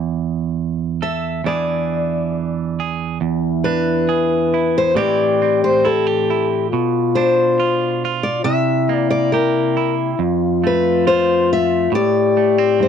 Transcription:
Already playing: clean electric guitar E2
1.02 clean electric guitar A4, steel-string acoustic guitar E5
1.44 clean electric guitar E2 E3 D4 E4 G#4, steel-string acoustic guitar D5
2.80 clean electric guitar G#4
3.21 clean electric guitar E2, french horn E4
3.64 clean electric guitar D4, steel-string acoustic guitar B4
4.09 clean electric guitar G#4
4.54 clean electric guitar E4
4.78 steel-string acoustic guitar C5
4.95 clean electric guitar A2 E3 C4 E4 G4, french horn G4, steel-string acoustic guitar D5
5.42 clean electric guitar C4
5.64 steel-string acoustic guitar C5
5.85 clean electric guitar E4, steel-string acoustic guitar A4
6.07 clean electric guitar G4
6.30 clean electric guitar E4
6.70 clean electric guitar B2, french horn F4
7.15 clean electric guitar D4, steel-string acoustic guitar C5
7.59 clean electric guitar F4
8.05 clean electric guitar F4
8.23 steel-string acoustic guitar D5
8.39 french horn F4
8.44 clean electric guitar C3, french horn E4, steel-string acoustic guitar E5
8.89 clean electric guitar A#3
8.95 steel-string acoustic guitar D5
9.11 steel-string acoustic guitar D5
9.32 clean electric guitar G4, steel-string acoustic guitar A#4
9.77 clean electric guitar E4
10.13 french horn E4
10.19 clean electric guitar F2, french horn F4
10.64 clean electric guitar A3, steel-string acoustic guitar B4
11.07 clean electric guitar F4, steel-string acoustic guitar C5
11.53 steel-string acoustic guitar E5
11.92 clean electric guitar A2, french horn G4, steel-string acoustic guitar D5
12.37 clean electric guitar A3
12.58 clean electric guitar C4
12.80 clean electric guitar G2, steel-string acoustic guitar C5

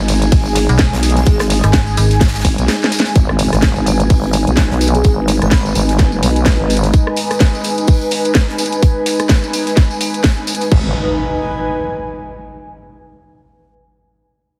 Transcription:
Already playing: analog synth pad G#3 D#4 G#4 G#5
0.00 wobble bass G#1
0.08 closed hi-hat, open hi-hat, ride, tambourine
0.22 closed hi-hat, tambourine
0.32 wobble bass G#1, kick, closed hi-hat, open hi-hat, ride, tambourine
0.45 tambourine
0.55 snare, closed hi-hat, open hi-hat, ride, tambourine
0.69 fm bass B1, closed hi-hat, tambourine
0.79 kick, snare, closed hi-hat, ride, tambourine
0.93 wobble bass B1, snare, closed hi-hat
1.02 snare, closed hi-hat, open hi-hat, ride, tambourine
1.10 closed hi-hat
1.16 digital synth lead G#4, snare, closed hi-hat, tambourine
1.25 wobble bass G#1, digital synth lead G#4, kick, closed hi-hat, ride, tambourine
1.39 cross-stick, snare, closed hi-hat, tambourine
1.50 snare, open hi-hat, ride, tambourine
1.63 fm bass G#1, cross-stick, closed hi-hat, tambourine
1.73 kick, snare, closed hi-hat, ride, tambourine
1.87 tambourine
1.97 fm bass G#1, closed hi-hat, open hi-hat, ride, tambourine
2.11 snare, closed hi-hat, tambourine
2.21 kick, snare, closed hi-hat, ride, tambourine
2.28 snare, closed hi-hat
2.34 snare, closed hi-hat, tambourine
2.40 snare, closed hi-hat
2.45 wobble bass G#1, kick, closed hi-hat, open hi-hat, ride, tambourine
2.58 wobble bass B1, closed hi-hat, tambourine
2.68 snare, closed hi-hat, ride, tambourine
2.82 snare, tambourine
2.92 snare, closed hi-hat, open hi-hat, ride, tambourine
2.99 snare, closed hi-hat
3.05 snare, open hi-hat, tambourine
3.15 wobble bass G#1, analog synth pad G#3 D#4 B4, kick, closed hi-hat, tambourine, impact
3.28 analog synth pad B4, cross-stick
3.39 closed hi-hat, open hi-hat, tambourine
3.53 wobble bass G#1, cross-stick, snare, closed hi-hat, tambourine
3.62 kick, snare, closed hi-hat, tambourine
3.76 wobble bass G#1, tambourine
3.86 closed hi-hat, open hi-hat, tambourine
4.00 closed hi-hat, tambourine
4.10 wobble bass G#1, kick, closed hi-hat, open hi-hat, tambourine
4.24 tambourine
4.33 closed hi-hat, open hi-hat, tambourine
4.47 wobble bass B1, closed hi-hat, tambourine
4.57 kick, snare, closed hi-hat, tambourine
4.71 wobble bass B1, snare
4.81 closed hi-hat, open hi-hat, tambourine
4.88 closed hi-hat
4.95 digital synth lead G#4, closed hi-hat, tambourine
5.04 wobble bass G#1, digital synth lead G#4, kick, closed hi-hat, tambourine
5.28 snare, closed hi-hat, open hi-hat, tambourine
5.42 wobble bass G#1, digital synth lead B4, cross-stick, closed hi-hat, tambourine
5.51 digital synth lead B4, kick, snare, closed hi-hat, tambourine
5.65 tambourine
5.75 wobble bass G#1, closed hi-hat, open hi-hat, tambourine
5.89 snare, closed hi-hat, tambourine
5.99 kick, snare, closed hi-hat, tambourine
6.12 tambourine
6.23 wobble bass B1, closed hi-hat, open hi-hat, tambourine
6.36 closed hi-hat, tambourine
6.45 kick, snare, closed hi-hat, tambourine
6.60 wobble bass G#1
6.70 closed hi-hat, open hi-hat, tambourine
6.77 closed hi-hat
6.83 snare, closed hi-hat, tambourine
6.93 kick, closed hi-hat, tambourine
7.07 cross-stick
7.16 closed hi-hat, open hi-hat, tambourine
7.31 cross-stick, snare, closed hi-hat, tambourine
7.40 kick, snare, closed hi-hat, tambourine
7.55 tambourine
7.64 closed hi-hat, open hi-hat, tambourine
7.78 closed hi-hat, tambourine
7.87 kick, closed hi-hat, open hi-hat, tambourine
8.01 tambourine
8.11 closed hi-hat, open hi-hat, tambourine
8.25 closed hi-hat, tambourine
8.35 kick, snare, closed hi-hat, tambourine
8.49 snare
8.58 closed hi-hat, open hi-hat, tambourine
8.66 closed hi-hat
8.72 closed hi-hat, tambourine
8.83 kick, closed hi-hat, tambourine
9.06 snare, closed hi-hat, open hi-hat, tambourine
9.19 cross-stick, closed hi-hat, tambourine
9.29 kick, snare, closed hi-hat, tambourine
9.44 tambourine
9.53 closed hi-hat, open hi-hat, tambourine
9.67 snare, closed hi-hat, tambourine
9.77 kick, snare, closed hi-hat, tambourine
9.91 tambourine
10.01 closed hi-hat, open hi-hat, tambourine
10.14 closed hi-hat, tambourine
10.24 kick, snare, closed hi-hat, tambourine
10.47 closed hi-hat, open hi-hat, tambourine
10.55 closed hi-hat
10.61 snare, closed hi-hat, tambourine
10.72 wobble bass G#1, analog synth pad D#4, kick, crash, impact
10.80 analog synth pad B4
10.87 analog synth pad G#5

